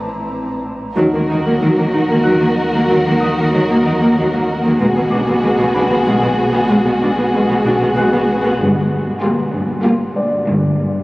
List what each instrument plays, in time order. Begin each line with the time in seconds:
Already playing: sub bass A#1, violin section A5 A#5
0.96 double bass section D#2, sub bass D#2, cello section D#3, viola section F#3, violin section F#4 A#4
1.13 cello section D#3, viola section A#3
1.28 double bass section D#2, cello section D#3, viola section D#4
1.44 cello section D#3, viola section A#3
1.61 double bass section D#2, cello section D#3 D#4, viola section F#3
1.76 cello section D#3, viola section A#3
1.92 double bass section D#2, cello section D#3, viola section D#4
2.08 cello section D#3, viola section A#3
2.23 double bass section D#2, cello section D#3 D#4, viola section F#3, grand piano F#6
2.40 cello section D#3, viola section A#3
2.57 cello section D#4
2.72 cello section D#3, viola section A#3
2.88 double bass section D#2, cello section D#3, viola section F#3
3.05 cello section D#3, viola section A#3
3.20 double bass section D#2, cello section D#3, viola section D#4, grand piano D#6
3.37 cello section D#3, viola section A#3
3.52 double bass section D#2, cello section D#3 D#4, viola section F#3
3.69 cello section D#3, viola section A#3
3.85 double bass section D#2, cello section D#3, viola section D#4
4.00 cello section D#3, viola section A#3
4.16 double bass section D#2, cello section D#3 D#4, viola section F#3
4.32 cello section D#3, viola section A#3
4.49 cello section D#4
4.64 cello section D#3, viola section A#3
4.78 sub bass B1, double bass section B1, cello section B2, viola section G#3, violin section F#4 G#4
4.95 cello section B2, viola section B3
5.11 double bass section B1, cello section B2, viola section D4, grand piano D6
5.26 cello section B2, viola section B3
5.42 double bass section B1, cello section B2 B3, viola section G#3
5.59 cello section B2, viola section B3
5.74 double bass section B1, cello section B2, viola section D4, grand piano B5
5.90 cello section B2, viola section B3
6.04 double bass section B1, cello section B2 B3, viola section G#3
6.20 cello section B2, viola section B3
6.38 cello section B3
6.53 cello section B2, viola section B3
6.69 double bass section B1, cello section B2, viola section G#3
6.85 cello section B2, viola section B3
7.01 double bass section B1, cello section B2, viola section D4
7.17 cello section B2, viola section B3
7.33 double bass section B1, cello section B2 B3, viola section G#3
7.48 cello section B2, viola section B3
7.64 double bass section B1, cello section B2, viola section D4
7.80 cello section B2, viola section B3
7.96 double bass section B1, cello section B2 B3, viola section G#3, grand piano F#6
8.12 cello section B2, viola section B3
8.28 cello section B3
8.43 cello section B2, viola section B3
8.59 double bass section G1, sub bass G1, cello section G2
8.90 cello section G2
9.21 cello section G3, viola section A#3, violin section F4 G4
9.54 cello section G2
9.83 cello section G3, viola section A#3, violin section F4 G4
10.16 cello section G3, grand piano D4 D5
10.46 double bass section G1, cello section G2
10.78 cello section G2